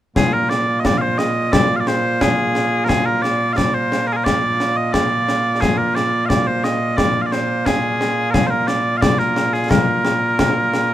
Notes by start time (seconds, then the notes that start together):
0.16 A#2 A#3 F4 G#4, concert bass drum, snare
0.33 A#4
0.49 D5, snare
0.80 D#5
0.85 D5, concert bass drum, snare
0.98 C5 F5
1.18 D#5, snare
1.52 D5, concert bass drum, snare
1.76 F5
1.80 D5
1.87 C5, snare
2.21 G#4, concert bass drum, snare
2.55 snare
2.84 A#4
2.89 G#4, concert bass drum, snare
3.06 A#4
3.22 D5, snare
3.53 D5 F5
3.58 concert bass drum, snare
3.74 C5
3.92 snare
4.07 A#4
4.13 G#4 A#4
4.24 D5, concert bass drum, snare
4.60 snare
4.76 D#5
4.93 D5, concert bass drum, snare
5.28 snare
5.61 G#4, concert bass drum, snare
5.77 A#4
5.95 D5, snare
6.26 D5 F5
6.30 concert bass drum, snare
6.47 C5
6.64 D#5, snare
6.97 D5, concert bass drum, snare
7.22 F5
7.26 D5
7.32 C5, snare
7.66 G#4, concert bass drum, snare
8.01 snare
8.31 G#4 A#4, concert bass drum, snare
8.47 A#4 C5
8.67 D5, snare
8.97 F5
9.01 D5, concert bass drum, snare
9.19 A#4, snare
9.36 snare
9.53 G#4, snare
9.70 A#4, concert bass drum, snare
10.05 snare
10.39 concert bass drum, snare
10.74 snare